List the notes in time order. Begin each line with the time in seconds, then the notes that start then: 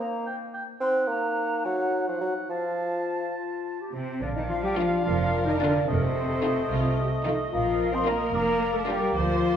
0.00 A#3 A#5
0.26 G5
0.54 G5
0.80 C4 D#4 F#5 C6
1.08 A#3 A#5
1.65 F#3 F#5
2.07 F3 F5 F#5
2.21 F#3 F#5
2.49 F3 F4 F5 A5
3.36 F4
3.81 G4
3.92 C3 C4 C5
4.21 A#1 D3 D4 D5 F5
4.35 D#3 D#4 D#5
4.49 F3 F4 F5
4.63 G3 G4 G5
4.77 F3 A#3 D4 F4 F5
5.04 F1 F3 F4 A#4 F5
5.45 D#3 D#4 D#5
5.59 D3 A#3 D4 F4 D5
5.85 F1 C3 A3 C4 A4 C5 D#5
5.94 A#4
6.02 C5
6.43 A3 D#4 F4
6.70 C2 F4
7.00 G4
7.25 D#3 A3 D#4 F4 A4 D#5
7.51 A#1 F3 A#3 F4 A#4 F5
7.93 C4 C5 C6
8.06 A#3 D4 F4 A#4 A#5
8.33 F1 A#3 A#4 D5 A#5
8.73 A3 A4 A5
8.77 A4
8.88 G3 A#3 D4 F4 G4 G5
9.15 D2 F3 F4 C5 F5